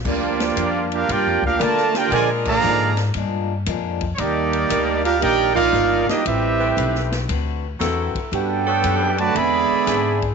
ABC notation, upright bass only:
X:1
M:4/4
L:1/8
Q:"Swing" 1/4=116
K:Gm
V:1 name="Upright bass" clef=bass
D,,2 F,,2 (3G,, F,, D,, D,2 | B,,2 _A,,2 G,,2 F,,2 | E,,2 D,,2 B,,,2 G,,, z | A,,,2 =B,,,2 D,,2 =E,, z |
G,,2 ^F,,2 =E,, z ^G,,2 |]